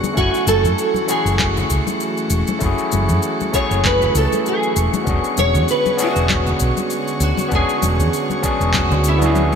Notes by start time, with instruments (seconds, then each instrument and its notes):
Already playing: analog synth pad D3 F#3 F#4 C#5, tine electric piano B3 C#4 D4 F#4 G#4, synth texture C#6
0.04 high conga, shaker
0.14 fingered electric bass F#1, analog synth pad E3 A3, tine electric piano A3 C#4 E4, nylon-string guitar F#4, kick, shaker
0.19 tine electric piano F#4 G#5
0.34 shaker
0.47 fingered electric bass F#1, nylon-string guitar A4, high conga, shaker
0.64 fingered electric bass F#2, shaker
0.78 shaker
0.94 high conga, shaker
1.07 tine electric piano A3 C#4 E4 F#4 G#4, nylon-string guitar G#4, shaker
1.25 fingered electric bass F#1, shaker
1.39 kick, clap, high conga, shaker
1.57 low conga, shaker
1.70 fingered electric bass C#2, kick, shaker
1.87 high conga, shaker
2.00 shaker
2.17 shaker
2.30 fingered electric bass E1, shaker
2.47 high conga, shaker
2.59 fingered electric bass F#1, tine electric piano A3 C#4 E4, kick, shaker
2.64 tine electric piano F#4 G#4
2.78 shaker
2.92 fingered electric bass F#1, high conga, shaker
3.09 fingered electric bass F#2, shaker
3.23 shaker
3.40 high conga, shaker
3.52 tine electric piano A3 C#4 E4 F#4 G#4, nylon-string guitar C#5, kick, shaker
3.71 fingered electric bass F#1, shaker
3.84 nylon-string guitar B4, kick, clap, high conga, shaker
4.02 low conga, shaker
4.15 fingered electric bass C#2, nylon-string guitar A4, shaker
4.33 high conga, shaker
4.46 nylon-string guitar G#4, shaker
4.63 shaker
4.76 fingered electric bass E1, shaker
4.94 high conga, shaker
5.04 fingered electric bass E1, analog synth pad D3 G#3 F#4 C#5, tine electric piano B3 C#4 D4, kick, shaker
5.09 tine electric piano F#4 G#4
5.24 shaker
5.37 fingered electric bass E1, nylon-string guitar C#5, high conga, shaker
5.55 fingered electric bass E2, shaker
5.68 nylon-string guitar B4, shaker
5.86 high conga, shaker
5.97 tine electric piano B3 C#4 D4 F#4 G#4, shaker
6.02 nylon-string guitar F#4
6.16 fingered electric bass E1, shaker
6.29 kick, clap, high conga, shaker
6.47 low conga, shaker
6.60 fingered electric bass B1, kick, shaker
6.77 high conga, shaker
6.90 shaker
7.08 shaker
7.20 fingered electric bass D2, nylon-string guitar F#4, shaker
7.37 high conga, shaker
7.49 fingered electric bass E1, tine electric piano B3 C#4 D4, kick, shaker
7.54 tine electric piano F#4 G#4, nylon-string guitar G#4
7.69 shaker
7.83 fingered electric bass E1, high conga, shaker
8.00 fingered electric bass E2, shaker
8.14 shaker
8.30 high conga, shaker
8.42 tine electric piano B3 C#4 D4 F#4 G#4, kick, shaker
8.60 fingered electric bass E1, shaker
8.74 nylon-string guitar F#4, kick, clap, high conga, shaker
8.91 fingered electric bass D2, low conga, shaker
9.04 shaker
9.08 nylon-string guitar E4
9.18 tine electric piano B3 C#4 D4, shaker
9.22 tine electric piano F#4 G#4, high conga
9.35 high tom, shaker